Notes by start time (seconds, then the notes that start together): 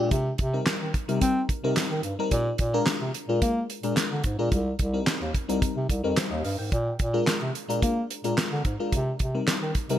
Already playing: G#3
0.00 D4 F4 G4
0.11 C3, kick, closed hi-hat
0.38 C3, kick, closed hi-hat
0.53 G3 C4 D#4 A#4
0.67 snare, clap, closed hi-hat
0.81 D#3
0.94 kick, closed hi-hat
1.08 C3 G3 C4 D#4 A#4, closed hi-hat
1.21 C4, kick, closed hi-hat
1.49 kick, closed hi-hat
1.63 C3 G3 C4 D#4 A#4
1.77 snare, clap, closed hi-hat
1.91 D#3
2.03 G2, closed hi-hat
2.19 G3 C4 D#4 A#4
2.31 A#2, kick, closed hi-hat
2.58 A#2, kick, closed hi-hat
2.73 G#3 D4 F4 A#4
2.87 snare, clap, closed hi-hat
3.01 C3
3.14 closed hi-hat
3.29 A#2 G#3 D4 F4 A#4
3.42 A#3, kick, closed hi-hat
3.70 closed hi-hat
3.83 A#2 G#3 D4 F4 A#4, closed hi-hat
3.97 snare, clap, closed hi-hat
4.11 D3
4.24 G#2, kick, closed hi-hat
4.38 A#2 G#3 D4 F4 A#4
4.52 C2, kick, closed hi-hat
4.79 C2, kick, closed hi-hat
4.93 G3 C4 D#4 A#4
5.07 snare, clap, closed hi-hat
5.22 D#2
5.34 kick, closed hi-hat
5.48 C2 G3 C4 D#4 A#4, closed hi-hat
5.62 kick, closed hi-hat
5.77 C3
5.89 C2, kick, closed hi-hat
6.04 F2 G3 C4 D#4 A#4
6.17 C5, snare, clap, closed hi-hat
6.31 D#2 G4 D#5
6.44 G2 F5, open hi-hat
6.58 G#2 A#4 G5
6.72 A#2, kick, closed hi-hat
6.99 A#2, kick, closed hi-hat
7.13 G#3 D4 F4 A#4
7.27 snare, clap, closed hi-hat
7.41 C3
7.55 closed hi-hat
7.68 A#2 G#3 D4 F4 A#4, closed hi-hat
7.82 A#3, kick, closed hi-hat
8.10 closed hi-hat
8.24 A#2 G#3 D4 F4 A#4, closed hi-hat
8.38 snare, clap, closed hi-hat
8.52 D3
8.65 G#2, kick, closed hi-hat
8.80 G#3 D4 F4 A#4
8.92 C3, kick, closed hi-hat
9.19 C3, kick, closed hi-hat
9.34 G3 C4 D#4 A#4
9.48 snare, clap, closed hi-hat
9.62 D#3
9.75 kick, closed hi-hat
9.89 C3 G3 C4 D#4 A#4, closed hi-hat